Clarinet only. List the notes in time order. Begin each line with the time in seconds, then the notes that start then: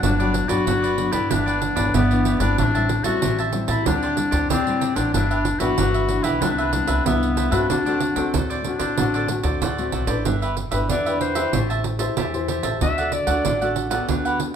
0.03 D4
0.49 F#4
1.13 E4
1.31 D4
1.95 B3
2.40 D4
2.58 D4
3.04 F#4
3.68 E4
3.86 D4
4.50 C4
4.96 D4
5.13 D4
5.60 F#4
6.24 E4
6.41 D4
7.05 B3
7.51 D4
7.69 D4
8.65 D4
10.90 D5
11.21 C5
12.82 E5
13.13 D5